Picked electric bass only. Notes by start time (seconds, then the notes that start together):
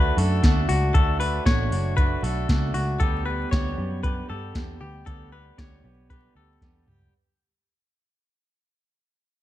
Already playing: D2
0.17 F#2
0.43 D2
0.69 C#2
0.95 D2
1.46 A1
1.71 F#1
2.23 B1
2.49 C#2
2.74 C#2
3.00 D2
3.52 D2
3.78 F#2
4.30 G2
4.55 E2
4.81 D2
5.07 D2
5.58 D2
5.84 B1
6.35 D2
6.62 E2
6.87 C#2